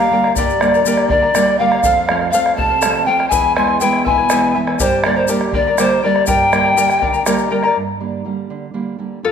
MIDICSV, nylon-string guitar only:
0, 0, Header, 1, 2, 480
1, 0, Start_track
1, 0, Tempo, 492611
1, 361, Time_signature, 6, 3, 24, 8
1, 9079, End_track
2, 0, Start_track
2, 0, Title_t, "Nylon-string guitar"
2, 0, Program_c, 0, 24
2, 0, Note_on_c, 0, 55, 54
2, 98, Note_off_c, 0, 55, 0
2, 101, Note_on_c, 0, 50, 51
2, 109, Note_on_c, 0, 58, 53
2, 110, Note_on_c, 0, 55, 49
2, 346, Note_on_c, 0, 43, 62
2, 493, Note_off_c, 0, 50, 0
2, 495, Note_off_c, 0, 58, 0
2, 497, Note_off_c, 0, 55, 0
2, 582, Note_on_c, 0, 50, 49
2, 587, Note_on_c, 0, 55, 42
2, 595, Note_on_c, 0, 58, 54
2, 808, Note_off_c, 0, 50, 0
2, 818, Note_off_c, 0, 43, 0
2, 819, Note_off_c, 0, 55, 0
2, 820, Note_on_c, 0, 50, 52
2, 823, Note_off_c, 0, 58, 0
2, 830, Note_on_c, 0, 55, 41
2, 836, Note_on_c, 0, 58, 58
2, 1044, Note_off_c, 0, 50, 0
2, 1056, Note_on_c, 0, 50, 67
2, 1217, Note_off_c, 0, 55, 0
2, 1219, Note_off_c, 0, 58, 0
2, 1297, Note_off_c, 0, 50, 0
2, 1308, Note_on_c, 0, 50, 58
2, 1316, Note_on_c, 0, 58, 55
2, 1317, Note_on_c, 0, 55, 46
2, 1546, Note_off_c, 0, 50, 0
2, 1549, Note_off_c, 0, 55, 0
2, 1555, Note_off_c, 0, 58, 0
2, 1557, Note_on_c, 0, 50, 53
2, 1563, Note_on_c, 0, 55, 48
2, 1566, Note_on_c, 0, 58, 61
2, 1749, Note_off_c, 0, 50, 0
2, 1751, Note_off_c, 0, 55, 0
2, 1754, Note_off_c, 0, 58, 0
2, 1808, Note_on_c, 0, 41, 66
2, 2042, Note_on_c, 0, 53, 56
2, 2045, Note_on_c, 0, 57, 50
2, 2048, Note_on_c, 0, 60, 58
2, 2267, Note_off_c, 0, 41, 0
2, 2273, Note_off_c, 0, 53, 0
2, 2273, Note_off_c, 0, 60, 0
2, 2281, Note_off_c, 0, 57, 0
2, 2285, Note_on_c, 0, 53, 47
2, 2287, Note_on_c, 0, 60, 49
2, 2292, Note_on_c, 0, 57, 47
2, 2527, Note_on_c, 0, 48, 65
2, 2664, Note_off_c, 0, 53, 0
2, 2664, Note_off_c, 0, 60, 0
2, 2669, Note_off_c, 0, 57, 0
2, 2769, Note_on_c, 0, 53, 57
2, 2774, Note_on_c, 0, 57, 49
2, 2778, Note_on_c, 0, 60, 58
2, 2974, Note_off_c, 0, 53, 0
2, 2974, Note_off_c, 0, 60, 0
2, 2979, Note_off_c, 0, 57, 0
2, 2984, Note_on_c, 0, 53, 51
2, 2986, Note_off_c, 0, 48, 0
2, 2989, Note_on_c, 0, 60, 54
2, 2990, Note_on_c, 0, 57, 49
2, 3181, Note_off_c, 0, 53, 0
2, 3181, Note_off_c, 0, 60, 0
2, 3183, Note_off_c, 0, 57, 0
2, 3234, Note_on_c, 0, 40, 64
2, 3480, Note_on_c, 0, 52, 46
2, 3485, Note_on_c, 0, 56, 46
2, 3487, Note_on_c, 0, 59, 53
2, 3698, Note_off_c, 0, 40, 0
2, 3721, Note_off_c, 0, 52, 0
2, 3722, Note_off_c, 0, 56, 0
2, 3729, Note_off_c, 0, 59, 0
2, 3731, Note_on_c, 0, 52, 51
2, 3736, Note_on_c, 0, 56, 45
2, 3741, Note_on_c, 0, 59, 55
2, 3980, Note_on_c, 0, 47, 69
2, 4108, Note_off_c, 0, 52, 0
2, 4108, Note_off_c, 0, 56, 0
2, 4113, Note_off_c, 0, 59, 0
2, 4215, Note_on_c, 0, 52, 56
2, 4217, Note_on_c, 0, 56, 48
2, 4221, Note_on_c, 0, 59, 60
2, 4431, Note_off_c, 0, 47, 0
2, 4442, Note_off_c, 0, 56, 0
2, 4443, Note_off_c, 0, 52, 0
2, 4453, Note_off_c, 0, 59, 0
2, 4453, Note_on_c, 0, 52, 53
2, 4455, Note_on_c, 0, 56, 50
2, 4464, Note_on_c, 0, 59, 56
2, 4637, Note_off_c, 0, 52, 0
2, 4637, Note_off_c, 0, 56, 0
2, 4643, Note_off_c, 0, 59, 0
2, 4678, Note_on_c, 0, 43, 67
2, 4926, Note_on_c, 0, 50, 55
2, 4932, Note_on_c, 0, 58, 60
2, 4933, Note_on_c, 0, 55, 45
2, 5140, Note_off_c, 0, 43, 0
2, 5147, Note_off_c, 0, 50, 0
2, 5149, Note_off_c, 0, 55, 0
2, 5153, Note_off_c, 0, 58, 0
2, 5158, Note_on_c, 0, 50, 50
2, 5162, Note_on_c, 0, 55, 46
2, 5165, Note_on_c, 0, 58, 53
2, 5364, Note_off_c, 0, 50, 0
2, 5376, Note_on_c, 0, 50, 68
2, 5541, Note_off_c, 0, 55, 0
2, 5543, Note_off_c, 0, 58, 0
2, 5620, Note_off_c, 0, 50, 0
2, 5631, Note_on_c, 0, 50, 55
2, 5636, Note_on_c, 0, 55, 52
2, 5644, Note_on_c, 0, 58, 58
2, 5871, Note_off_c, 0, 50, 0
2, 5874, Note_off_c, 0, 58, 0
2, 5876, Note_off_c, 0, 55, 0
2, 5882, Note_on_c, 0, 50, 56
2, 5888, Note_on_c, 0, 55, 48
2, 5888, Note_on_c, 0, 58, 54
2, 6117, Note_on_c, 0, 43, 72
2, 6262, Note_off_c, 0, 50, 0
2, 6264, Note_off_c, 0, 58, 0
2, 6265, Note_off_c, 0, 55, 0
2, 6347, Note_on_c, 0, 50, 51
2, 6352, Note_on_c, 0, 55, 48
2, 6358, Note_on_c, 0, 58, 55
2, 6580, Note_off_c, 0, 43, 0
2, 6581, Note_off_c, 0, 50, 0
2, 6590, Note_off_c, 0, 55, 0
2, 6591, Note_off_c, 0, 58, 0
2, 6593, Note_on_c, 0, 50, 51
2, 6600, Note_on_c, 0, 55, 46
2, 6605, Note_on_c, 0, 58, 49
2, 6840, Note_off_c, 0, 50, 0
2, 6852, Note_on_c, 0, 50, 66
2, 6982, Note_off_c, 0, 55, 0
2, 6983, Note_off_c, 0, 58, 0
2, 7054, Note_off_c, 0, 50, 0
2, 7066, Note_on_c, 0, 50, 54
2, 7071, Note_on_c, 0, 55, 52
2, 7079, Note_on_c, 0, 58, 58
2, 7300, Note_off_c, 0, 50, 0
2, 7304, Note_off_c, 0, 55, 0
2, 7311, Note_on_c, 0, 50, 48
2, 7314, Note_off_c, 0, 58, 0
2, 7318, Note_on_c, 0, 55, 46
2, 7325, Note_on_c, 0, 58, 54
2, 7505, Note_off_c, 0, 50, 0
2, 7507, Note_off_c, 0, 55, 0
2, 7513, Note_off_c, 0, 58, 0
2, 7560, Note_on_c, 0, 43, 61
2, 7799, Note_on_c, 0, 50, 45
2, 7800, Note_on_c, 0, 55, 39
2, 7805, Note_on_c, 0, 58, 47
2, 8024, Note_off_c, 0, 43, 0
2, 8024, Note_off_c, 0, 50, 0
2, 8028, Note_off_c, 0, 55, 0
2, 8036, Note_off_c, 0, 58, 0
2, 8036, Note_on_c, 0, 50, 42
2, 8043, Note_on_c, 0, 55, 39
2, 8047, Note_on_c, 0, 58, 44
2, 8272, Note_off_c, 0, 50, 0
2, 8283, Note_on_c, 0, 50, 60
2, 8423, Note_off_c, 0, 55, 0
2, 8428, Note_off_c, 0, 58, 0
2, 8503, Note_off_c, 0, 50, 0
2, 8513, Note_on_c, 0, 50, 49
2, 8517, Note_on_c, 0, 58, 57
2, 8521, Note_on_c, 0, 55, 47
2, 8743, Note_off_c, 0, 55, 0
2, 8745, Note_off_c, 0, 50, 0
2, 8747, Note_off_c, 0, 58, 0
2, 8754, Note_on_c, 0, 50, 40
2, 8757, Note_on_c, 0, 55, 40
2, 8764, Note_on_c, 0, 58, 52
2, 8949, Note_off_c, 0, 55, 0
2, 8950, Note_off_c, 0, 50, 0
2, 8951, Note_off_c, 0, 58, 0
2, 8997, Note_on_c, 0, 41, 57
2, 9079, Note_off_c, 0, 41, 0
2, 9079, End_track
0, 0, End_of_file